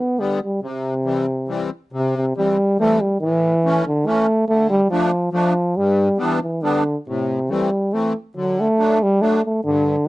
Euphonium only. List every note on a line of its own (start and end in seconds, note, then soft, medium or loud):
0.00 0.21 B3 medium
0.20 0.42 G3 medium
0.44 0.62 G3 medium
0.64 1.69 C3 medium
1.93 2.14 C3 medium
2.17 2.35 C3 medium
2.36 2.76 G3 medium
2.80 3.02 A3 loud
3.01 3.20 G3 medium
3.21 3.82 E3 loud
3.87 4.08 D3 medium
4.07 4.47 A3 loud
4.48 4.69 A3 loud
4.70 4.89 G3 loud
4.90 5.30 F3 medium
5.32 5.78 F3 medium
5.77 6.19 G3 loud
6.21 6.41 E3 medium
6.43 6.65 E3 medium
6.64 6.96 D3 medium
7.08 7.52 C3 medium
7.51 7.95 G3 medium
7.93 8.15 A3 medium
8.37 8.62 F#3 medium
8.60 9.04 A3 loud
9.02 9.23 G3 loud
9.22 9.43 A3 medium
9.45 9.63 A3 medium
9.64 10.08 D3 medium